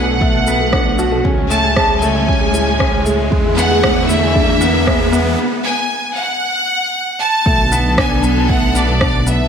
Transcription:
Already playing: detuned saw bass B1, string section B2 A3, upright piano B3 D4 F#4, violin section F#5, riser
0.21 upright piano A3, synth arpeggio sound F#5, kick
0.34 synth arpeggio sound A5
0.47 upright piano B3, synth arpeggio sound A4, shaker
0.61 synth arpeggio sound A4
0.73 upright piano D4, kick, cross-stick
0.87 synth arpeggio sound F#5
0.99 upright piano F#4, synth arpeggio sound A5, shaker
1.12 synth arpeggio sound A4
1.24 detuned saw bass C#2, string section A2 G#3 C#4, upright piano C#4, synth arpeggio sound G#4, kick
1.50 upright piano A3, synth arpeggio sound E5, violin section A5, shaker
1.64 synth arpeggio sound G#5
1.76 upright piano G#3, synth arpeggio sound G#4, kick, cross-stick
1.90 synth arpeggio sound G#4
2.02 upright piano A3, violin section G#5, shaker
2.15 synth arpeggio sound E5
2.28 upright piano C#4, synth arpeggio sound G#5, kick
2.41 synth arpeggio sound G#4
2.53 upright piano E4, synth arpeggio sound G#4, shaker
2.79 upright piano C#4, synth arpeggio sound E5, kick, cross-stick
2.93 synth arpeggio sound G#5
3.05 upright piano A3, synth arpeggio sound G#4, shaker
3.19 synth arpeggio sound G#4
3.31 detuned saw bass E2, string section D3 E4, upright piano G#3, kick
3.45 synth arpeggio sound E5
3.57 upright piano B3, violin section F#5, synth arpeggio sound G#5, shaker
3.71 synth arpeggio sound G#4
3.83 upright piano D4, synth arpeggio sound G#4, kick, cross-stick
4.09 upright piano E4, violin section E5, synth arpeggio sound E5, shaker
4.23 synth arpeggio sound G#5
4.35 upright piano D4, synth arpeggio sound G#4, kick
4.48 synth arpeggio sound G#4
4.61 upright piano B3, shaker
4.75 synth arpeggio sound E5
4.87 upright piano G#3, synth arpeggio sound G#5, kick, cross-stick
5.00 synth arpeggio sound G#4
5.12 upright piano B3, synth arpeggio sound G#4, shaker
5.64 violin section G#5
6.16 violin section F#5
7.20 violin section A5
7.46 detuned saw bass B1, string section D3 B3 A4, upright piano A3, kick
7.72 upright piano B3, shaker
7.98 upright piano D4, violin section G#5, kick, cross-stick
8.23 upright piano B3, shaker
8.49 upright piano A3, violin section F#5, kick
8.75 upright piano B3, violin section D5, shaker
9.01 upright piano D4, kick, cross-stick
9.27 upright piano B3, violin section E5, shaker

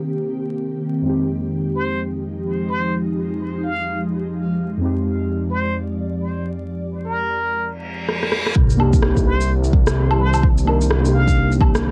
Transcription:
Already playing: synth keys C3 A#3 D4 D#4 G4, ambient pad D#3 A#3 C4 G4
1.01 synth keys F2 G#3
1.05 ambient pad F3 G#3 D#4, synth keys C4 D#4 G4
1.76 muted trumpet C5
2.69 muted trumpet C5
3.64 muted trumpet F5
4.77 synth keys F2 G#3 C4, ambient pad D5
4.83 synth keys D#4 G4
5.51 muted trumpet C5
7.06 muted trumpet A#4
7.62 reverse cymbal
8.09 cross-stick
8.23 cross-stick
8.32 cross-stick
8.46 cross-stick
8.56 detuned saw bass C2, ambient pad D#3 A#3 C4 G4, kick, sub drop
8.70 shaker
8.77 synth keys A#3 D4 D#4, low woodblock
8.81 synth keys G4
8.93 kick, shaker
9.02 cross-stick
9.15 synth keys A#3 D4 D#4 G4, kick, shaker
9.26 muted trumpet C5
9.41 shaker
9.64 shaker
9.73 kick
9.87 cross-stick, shaker
10.11 low woodblock
10.20 muted trumpet C5
10.34 low woodblock, shaker
10.43 kick
10.58 shaker
10.65 synth keys A#3 D4 D#4 A#4, low woodblock
10.81 shaker
10.91 cross-stick
11.00 synth keys A#3 D4
11.05 synth keys D#4 G4, shaker
11.14 muted trumpet F5
11.28 kick, shaker
11.52 shaker
11.61 kick, low woodblock
11.75 cross-stick, shaker

